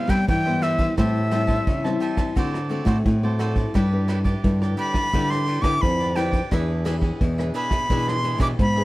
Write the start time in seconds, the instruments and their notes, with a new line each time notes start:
Already playing: nylon-string guitar C3 G3 B3 E4, flute F5
0.08 nylon-string guitar G3, cavaquinho E4 B4 C5 E5, flute G5, kick, cross-stick, ride
0.28 nylon-string guitar G2 E3, flute G5, kick, ride
0.46 nylon-string guitar G3 B3 E4, cavaquinho B4 C5 E5
0.62 cavaquinho E4 B4 C5 E5, flute E5, cross-stick, ride
0.78 cavaquinho B4 C5 E5, kick, ride
0.97 nylon-string guitar A2 G3 C4 E4, cavaquinho G4 C5 E5 A5, flute E5, kick, cross-stick, ride
1.31 nylon-string guitar G3 C4 E4, cavaquinho G4 C5 E5 A5, cross-stick, ride
1.47 cavaquinho C5 E5 A5, kick, ride
1.67 nylon-string guitar C#3 E3, kick, ride
1.84 nylon-string guitar G3 C4 E4, cavaquinho C5 E5 A5, cross-stick
2.00 cavaquinho G4 C5 E5 A5, ride
2.17 cavaquinho C5 E5 A5, kick, cross-stick, ride
2.36 nylon-string guitar D3 A3 C4 F#4, cavaquinho F#4 A4 C5 D5, kick, ride
2.54 cross-stick
2.69 nylon-string guitar A3 C4 F#4, cavaquinho F#4 A4 C5 D5, ride
2.85 nylon-string guitar A2, cavaquinho F#4 A4 C5 D5, kick, cross-stick, ride
3.05 nylon-string guitar A2, kick, ride
3.23 nylon-string guitar A3 C4 F#4, cavaquinho A4 C5 D5
3.39 cavaquinho F#4 A4 C5 D5, cross-stick, ride
3.55 cavaquinho A4 C5 D5, kick, ride
3.74 nylon-string guitar G2 G3 D4 E4 B4, cavaquinho E4 G4 B4 D5, kick, cross-stick, ride
3.93 nylon-string guitar D4 E4 B4
4.08 cavaquinho E4 G4 B4 D5, cross-stick, ride
4.24 cavaquinho G4 B4 D5, kick, ride
4.43 nylon-string guitar G2 D3 D4 E4 B4, kick, ride
4.61 cavaquinho G4 B4 D5, cross-stick
4.77 cavaquinho E4 G4 B4 D5, flute B5, ride
4.93 cavaquinho G4 B4 D5, kick, cross-stick, ride
5.13 nylon-string guitar D3 G3 D4 E4 B4, cavaquinho E4 G4 B4 D5, kick, ride
5.30 flute C6, cross-stick
5.46 cavaquinho E4 G4 B4 D5, ride
5.62 nylon-string guitar D3 D4 E4 B4, cavaquinho E4 G4 B4 D5, flute D6, kick, cross-stick, ride
5.81 nylon-string guitar F2 D3, flute B5, kick, ride
6.00 cavaquinho G4 B4 D5
6.15 nylon-string guitar D4 E4 B4, cavaquinho E4 G4 B4 D5, flute G5, cross-stick, ride
6.31 cavaquinho G4 B4 D5, kick, ride
6.51 nylon-string guitar E2 E3 D4 G#4 B4, cavaquinho D4 G#4 B4 E5, kick, cross-stick, ride
6.84 nylon-string guitar D4 G#4 B4, cavaquinho D4 G#4 B4 E5, cross-stick, ride
7.01 cavaquinho G#4 B4 E5, kick, ride
7.21 nylon-string guitar E2 B2, kick, ride
7.38 nylon-string guitar D4 G#4 B4, cavaquinho G#4 B4 E5, cross-stick
7.54 cavaquinho D4 G#4 B4 E5, flute B5, ride
7.70 cavaquinho G#4 B4 E5, kick, cross-stick, ride
7.89 nylon-string guitar B2 E3 D4 G#4 B4, cavaquinho D4 G#4 B4 E5, kick, ride
8.08 flute C6, cross-stick
8.23 cavaquinho D4 G#4 B4 E5, nylon-string guitar D4 G#4 B4, ride
8.38 nylon-string guitar B2, cavaquinho D4 G#4 B4 E5, flute D6, kick, cross-stick, ride
8.59 nylon-string guitar G#2 B2, flute B5, kick, ride
8.76 nylon-string guitar D4 G#4 B4, cavaquinho G#4 B4 E5